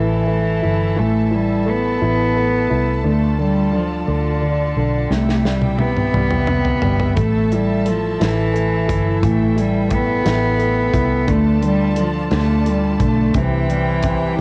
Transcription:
Already playing: A1 E3 A3 E4 A4 E5 A5
0.27 A3
0.63 G1 E4
0.96 A1 E3 A3
1.31 G3 E4
1.66 A3 B3
2.01 A1 E4
2.36 A3
2.70 C2 E4
3.04 D2 D3 A3 F4 D5
3.39 D3 G3
3.73 D3 F3
4.08 D2 D3
4.42 D3
4.76 B1 D3
5.10 C2 C3 A3 E4 G4 E5 G5, snare
5.29 snare
5.44 G3, snare
5.62 high tom
5.79 C3 B3, high tom
5.97 mid tom
6.14 C2 G3, mid tom
6.31 mid tom
6.47 C3, mid tom
6.65 floor tom
6.82 G1 G3, floor tom
7.00 floor tom
7.16 A1 A3 E4 A4 A5, kick, closed hi-hat
7.52 G3 E4, closed hi-hat
7.86 F3 A3, closed hi-hat
8.20 A1 E3 E4, snare, closed hi-hat
8.54 A3, closed hi-hat
8.88 G1 E4, kick, closed hi-hat
9.23 A1 E3 A3 G5, kick, closed hi-hat
9.56 G3 E4, closed hi-hat
9.89 A3, kick, closed hi-hat
9.93 B3
10.25 A1 E4, snare, closed hi-hat
10.59 A3, closed hi-hat
10.93 C2 E4, kick, closed hi-hat
11.27 D2 D3 A3 F4 D5 A5, kick, closed hi-hat
11.62 D3 G3, closed hi-hat
11.96 D3 F3, closed hi-hat
12.31 D2 D3 A3, snare, closed hi-hat
12.66 D3 G3, closed hi-hat
13.00 B1 D3 A3, kick, closed hi-hat
13.34 C2 C3 E3 E4 G4 C5 G5, kick, closed hi-hat
13.70 G3, closed hi-hat
14.03 C3, kick, closed hi-hat

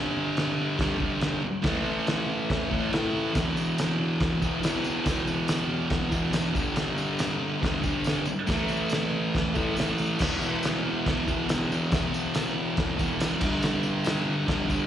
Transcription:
Already playing: G2 D3 G3
0.37 snare, crash
0.77 G2 D3, kick, snare, crash
0.82 G3
0.99 D3 G3, kick
1.04 G2
1.21 snare, crash
1.62 A2 E3, kick, snare, crash
1.67 A3
2.07 snare, crash
2.50 kick, snare, crash
2.70 E3 A3, kick
2.75 A2
2.91 A2 E3, snare, crash
2.96 A3
3.34 E2 B2, kick, snare, tambourine, crash
3.39 E3
3.57 tambourine
3.78 snare, tambourine, crash
4.20 kick, snare, crash
4.41 B2 E3, kick, tambourine
4.45 E2
4.61 E2 B2, snare, tambourine, crash
4.67 E3
4.84 tambourine
5.05 E2 B2, kick, snare, tambourine, crash
5.10 E3
5.27 tambourine
5.48 snare, tambourine, crash
5.90 kick, snare, crash
6.11 B2 E3, kick, tambourine
6.16 E2
6.32 E2 B2, snare, tambourine, crash
6.37 E3
6.54 G2 D3, kick, tambourine
6.59 G3
6.76 snare, tambourine, crash
6.98 tambourine
7.19 snare, tambourine, crash
7.62 G2 D3, kick, snare, crash
7.66 G3
7.83 D3 G3, kick, tambourine
7.88 G2
8.04 snare, tambourine, crash
8.25 tambourine
8.46 A2 E3, kick, snare, tambourine, crash
8.51 A3
8.68 tambourine
8.89 snare, tambourine, crash
9.35 kick, snare, crash
9.54 E3 A3, kick, tambourine
9.58 A2
9.76 A2 E3, tambourine, crash
9.80 A3, snare
9.98 tambourine
10.19 E2 B2, kick, snare, crash, tambourine
10.24 E3
10.41 tambourine
10.63 snare, tambourine, crash
11.06 kick, snare, crash
11.27 B2 E3, kick, tambourine
11.31 E2
11.49 E2 B2, snare, tambourine, crash
11.53 E3
11.72 tambourine
11.91 E2 B2, kick, snare, tambourine, crash
11.95 E3
12.14 tambourine
12.34 snare, tambourine, crash
12.77 kick, snare, crash
12.98 B2 E3, kick, tambourine
13.03 E2
13.20 E2 B2, snare, tambourine, crash
13.25 E3
13.41 G2 D3, kick, tambourine, crash
13.46 G3
13.62 snare, tambourine, crash
13.83 tambourine
14.04 snare, tambourine, crash
14.47 G2 D3, kick, snare, crash
14.52 G3
14.69 D3 G3, kick, tambourine
14.74 G2

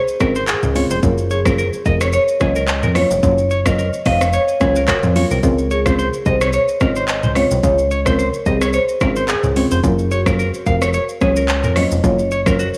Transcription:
Already playing: C5
0.08 shaker
0.20 G#1 G#3 C4 C#4 F4 A#4, kick, cross-stick, shaker
0.35 C5, shaker
0.47 G#4, clap, shaker
0.63 C#2, mid tom, shaker
0.75 G#3 C4 C#4 F4 C#5, open hi-hat, shaker
0.90 F1 C5, shaker
1.03 F#1 F#3 A#3 C#4 F4 A#4, kick, shaker
1.18 shaker
1.30 G#4 C#5, shaker
1.45 F#3 A#3 C#4 F4 A#4, kick, cross-stick, shaker
1.58 A#4, shaker
1.73 shaker
1.85 F1 A#4 D#5, kick, shaker
2.01 C#5, cross-stick, shaker
2.13 C#5, shaker
2.28 shaker
2.40 C#2 F#3 A#3 C#4 F4 G#4 D#5, kick, cross-stick, shaker
2.56 A#4, shaker
2.68 clap, shaker
2.83 F2 A#4, mid tom, shaker
2.95 F#3 A#3 C#4 F4 C#5, cross-stick, open hi-hat, shaker
3.11 F1, shaker
3.23 F#1 F#3 A#3 C#4 F4 C#5, kick, shaker
3.38 shaker
3.51 C#5, shaker
3.65 F#3 A#3 C#4 F4 A#4 D#5, kick, cross-stick, shaker
3.78 A#4, shaker
3.93 shaker
4.06 F1 D#5 F5, kick, cross-stick, mid tom, open hi-hat, shaker
4.21 C#5, cross-stick, shaker
4.33 C#5, shaker
4.48 shaker
4.60 C#2 F#3 A#3 C#4 F4 G#4 C#5, kick, cross-stick, shaker
4.76 A#4, shaker
4.88 F#4 A#4, kick, cross-stick, clap, shaker
5.03 F2, mid tom, shaker
5.15 F#3 A#3 C#4 F4 C#5, open hi-hat, shaker
5.31 C2 A#4, shaker
5.43 C#2 G#3 C4 C#4 F4 A#4, kick, shaker
5.58 shaker
5.71 G#4 C#5, shaker
5.86 G#3 C4 C#4 F4 C5, kick, cross-stick, shaker
5.99 C5, shaker
6.14 shaker
6.26 C2 C5 D#5, kick, shaker
6.41 C#5, cross-stick, shaker
6.53 C#5, shaker
6.68 shaker
6.80 G#1 G#3 C4 C#4 F4 A#4 D#5, kick, cross-stick, shaker
6.96 C5, shaker
7.08 D#5, clap, shaker
7.23 C#2 C5, mid tom, shaker
7.35 G#3 C4 C#4 F4 C#5, cross-stick, open hi-hat, shaker
7.51 C2, shaker
7.63 C#2 G#3 C#4 F4 C#5, kick, shaker
7.78 shaker
7.91 C#5, shaker
8.06 G#3 C4 C#4 F4 A#4 C5, kick, cross-stick, shaker
8.19 C5, shaker
8.34 shaker
8.46 C2 G#4 D#5, kick, shaker
8.61 C#5, cross-stick, shaker
8.73 C5 C#5, shaker
8.89 shaker
9.01 G#1 G#3 C4 C#4 F4 A#4, kick, cross-stick, shaker
9.16 C5, shaker
9.28 G#4, clap, shaker
9.43 C#2, mid tom, shaker
9.56 G#3 C4 C#4 F4 C#5, open hi-hat, shaker
9.71 F1 C5, shaker
9.83 F#1 F#3 A#3 C#4 F4 A#4, kick, shaker
9.99 shaker
10.11 F#4 C#5, shaker
10.26 F#3 A#3 C#4 F4 A#4, kick, cross-stick, shaker
10.39 A#4, shaker
10.54 shaker
10.66 F1 A#4 F5, kick, shaker
10.82 C#5, cross-stick, shaker
10.93 C#5, shaker
11.09 shaker
11.21 C#2 F#3 A#3 C#4 F4 G#4 C#5, kick, cross-stick, shaker
11.36 A#4, shaker
11.48 clap, shaker
11.64 F2 A#4, mid tom, shaker
11.76 F#3 A#3 C#4 F4 C#5 D#5, cross-stick, open hi-hat, shaker
11.91 F1, shaker
12.03 F#1 F#3 A#3 C#4 F4 C#5, kick, shaker
12.19 shaker
12.31 C#5, shaker
12.46 F#3 A#3 C#4 F4 A#4, kick, cross-stick, shaker
12.59 F#4, shaker
12.74 shaker

